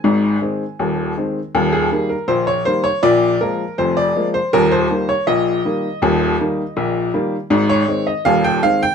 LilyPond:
<<
  \new Staff \with { instrumentName = "Upright piano" } { \time 2/4 \key aes \major \tempo 4 = 80 aes''4. r8 | r16 aes'8 bes'16 c''16 des''16 c''16 des''16 | d''8 bes'8 c''16 d''8 c''16 | bes'16 c''8 des''16 ees''4~ |
ees''4. r8 | r16 des''8 ees''16 f''16 g''16 f''16 g''16 | }
  \new Staff \with { instrumentName = "Upright piano" } { \clef bass \time 2/4 \key aes \major <aes,, aes,>8 <ees aes c'>8 <ees,, ees,>8 <ees aes c'>8 | <ees,, ees,>8 <ees g bes>8 <bes,, bes,>8 <ees g bes>8 | <bes,, bes,>8 <f aes bes>8 <f,, f,>8 <f aes bes>8 | <ees,, ees,>8 <ees g bes>8 <bes,, bes,>8 <ees g bes>8 |
<ees,, ees,>8 <ees g bes>8 <bes,, bes,>8 <ees g bes>8 | <aes,, aes,>8 <ees aes c'>8 <ees,, ees,>8 <ees aes c'>8 | }
>>